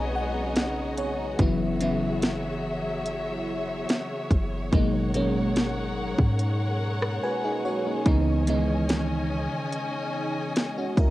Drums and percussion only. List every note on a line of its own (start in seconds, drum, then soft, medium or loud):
0.56 snare loud
0.56 closed hi-hat medium
0.98 closed hi-hat medium
1.39 kick loud
1.39 closed hi-hat medium
1.81 closed hi-hat medium
2.22 snare loud
2.22 closed hi-hat medium
3.06 closed hi-hat medium
3.89 snare loud
3.89 closed hi-hat medium
4.31 kick medium
4.31 closed hi-hat medium
4.72 kick loud
4.72 closed hi-hat medium
5.14 closed hi-hat medium
5.56 snare loud
5.56 closed hi-hat medium
6.18 kick medium
6.39 closed hi-hat medium
7.02 cross-stick loud
8.06 kick loud
8.06 closed hi-hat medium
8.47 closed hi-hat medium
8.89 snare loud
8.89 closed hi-hat medium
9.72 closed hi-hat medium
10.56 snare loud
10.56 closed hi-hat medium
10.97 kick medium
10.97 closed hi-hat medium